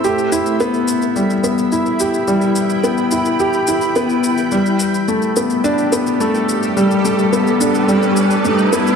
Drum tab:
SH |xxxxxxxxxxxxxxxx|xxxxxxxxxxxxxxxx|xxxxxxxxxxxxxxxx|xxxxxxxxxxxxxxxx|